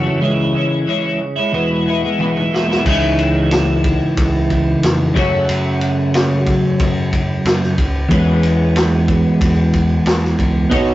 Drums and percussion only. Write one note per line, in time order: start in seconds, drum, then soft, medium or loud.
2.20 high tom soft
2.37 mid tom medium
2.54 snare medium
2.71 snare medium
2.86 kick loud
2.86 crash loud
3.19 ride medium
3.51 snare loud
3.51 ride medium
3.84 kick medium
3.84 ride medium
4.17 kick loud
4.17 ride medium
4.50 kick medium
4.50 ride medium
4.83 snare loud
4.83 ride medium
5.16 kick loud
5.16 ride medium
5.49 ride medium
5.81 ride medium
6.14 snare loud
6.14 ride medium
6.46 kick medium
6.46 ride medium
6.80 kick loud
6.80 ride medium
7.13 kick medium
7.13 ride medium
7.45 snare loud
7.45 ride medium
7.63 snare soft
7.78 kick medium
7.78 ride medium
8.11 kick loud
8.11 ride medium
8.43 ride medium
8.76 snare loud
8.76 ride medium
9.08 kick medium
9.08 ride medium
9.41 kick loud
9.41 ride medium
9.74 kick medium
9.74 ride medium
10.06 snare loud
10.06 ride medium
10.24 snare soft
10.39 kick medium
10.39 ride medium
10.71 kick loud
10.71 ride medium